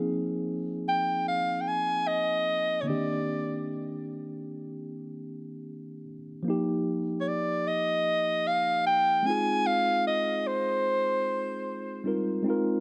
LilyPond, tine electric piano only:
\new Staff \with { instrumentName = "Tine electric piano" } { \time 4/4 \key f \dorian \tempo 4 = 75 <f bes c' ees' aes'>2.~ <f bes c' ees' aes'>8 <d ees bes c' d' g'>8~ | <d ees bes c' d' g'>2.~ <d ees bes c' d' g'>8 r8 | <f bes ees' g'>2.~ <f bes ees' g'>8 <aes c' ees' f' aes'>8~ | <aes c' ees' f' aes'>2. <g c' ees' f' bes'>8 <aes c' ees' f' bes'>8 | }